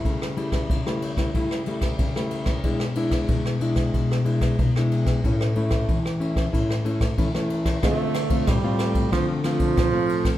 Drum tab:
RD |x-xxx-xxx-xxx-xx|x-xxx-xxx-xxx-xx|x-xxx-xxx-xxx-xx|x-xxx-xxx-xxx-xx|
SD |-r-r-r-r-r-r-r-r|-r-r-r-r-r-r-r-r|-r-r-r-r-r-r-r-r|r-r-r-r-r-r-r--r|
BD |o--oo--oo--oo--o|o--oo--oo--oo--o|o--oo--oo--oo--o|o--oo--oo--oo--o|